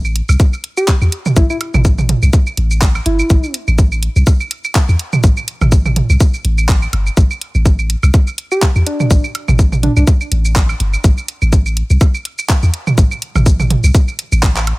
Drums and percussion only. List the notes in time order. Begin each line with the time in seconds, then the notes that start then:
0.05 claves, shaker
0.16 closed hi-hat
0.29 claves, high woodblock, shaker
0.40 kick, shaker
0.53 claves, shaker
0.64 closed hi-hat
0.77 claves, shaker
0.88 kick, clap, shaker
1.02 claves, shaker
1.12 closed hi-hat
1.26 mid tom, claves, shaker
1.36 kick, shaker
1.50 claves, shaker
1.61 closed hi-hat, high woodblock
1.74 mid tom, claves, shaker
1.85 kick, shaker
1.98 mid tom, claves, shaker
2.09 closed hi-hat, mid tom
2.22 claves, shaker
2.33 kick, shaker
2.47 claves, shaker
2.57 closed hi-hat
2.71 claves, shaker
2.82 kick, clap, shaker
2.95 claves, high woodblock, shaker
3.06 closed hi-hat
3.19 claves, shaker
3.30 kick, shaker
3.43 claves, shaker
3.54 closed hi-hat
3.68 claves, shaker
3.78 kick, shaker
3.92 claves, shaker
4.03 closed hi-hat
4.16 claves, shaker
4.27 kick, high woodblock, shaker
4.40 claves, shaker
4.51 closed hi-hat
4.64 claves, shaker
4.75 kick, clap, shaker
4.89 claves, shaker
4.99 closed hi-hat
5.13 mid tom, claves, shaker
5.24 kick, shaker
5.37 claves, shaker
5.48 closed hi-hat
5.61 mid tom, claves, high woodblock, shaker
5.72 kick, shaker
5.85 mid tom, claves, shaker
5.96 closed hi-hat, mid tom
6.10 claves, shaker
6.20 kick, shaker
6.34 claves, shaker
6.45 closed hi-hat
6.58 claves, shaker
6.69 kick, clap, shaker
6.82 claves, shaker
6.93 closed hi-hat, high woodblock
7.07 claves, shaker
7.17 kick, shaker
7.31 claves, shaker
7.41 closed hi-hat
7.55 claves, shaker
7.66 kick, shaker
7.79 claves, shaker
7.90 closed hi-hat
8.03 claves, high woodblock, shaker
8.14 kick, shaker
8.27 claves, shaker
8.38 closed hi-hat
8.52 claves, shaker
8.62 kick, clap, shaker
8.76 claves, shaker
8.87 closed hi-hat
9.00 mid tom, claves, shaker
9.11 kick, shaker
9.24 claves, shaker
9.35 closed hi-hat, high woodblock
9.48 mid tom, claves, shaker
9.59 kick, shaker
9.72 mid tom, claves, shaker
9.83 closed hi-hat, mid tom
9.97 claves, shaker
10.07 kick, shaker
10.21 claves, shaker
10.32 closed hi-hat
10.45 claves, shaker
10.56 kick, clap, shaker
10.69 claves, high woodblock, shaker
10.80 closed hi-hat
10.93 claves, shaker
11.04 kick, shaker
11.18 claves, shaker
11.28 closed hi-hat
11.42 claves, shaker
11.53 kick, shaker
11.66 claves, shaker
11.77 closed hi-hat
11.90 claves, shaker
12.01 kick, high woodblock, shaker
12.14 claves, shaker
12.25 closed hi-hat
12.39 claves, shaker
12.49 kick, clap, shaker
12.63 claves, shaker
12.74 closed hi-hat
12.87 mid tom, claves, shaker
12.98 kick, shaker
13.11 claves, shaker
13.22 closed hi-hat
13.36 mid tom, claves, high woodblock, shaker
13.46 kick, shaker
13.60 mid tom, claves, shaker
13.70 closed hi-hat, mid tom
13.84 claves, shaker
13.95 kick, shaker
14.08 claves, shaker
14.19 closed hi-hat
14.32 claves, shaker
14.43 kick, clap, shaker
14.56 clap, claves, shaker
14.67 closed hi-hat, high woodblock